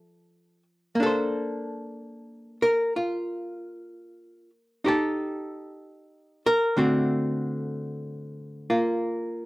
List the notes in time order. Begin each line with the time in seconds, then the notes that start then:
Already playing: F3 D4 A4 E5
0.95 A#3
1.00 D4 A4
1.06 C5
2.62 A#4
2.96 F4
4.84 D#4 G4 A4
6.46 A#4
6.77 D3 A3 C4 F#4
8.70 A#3 F4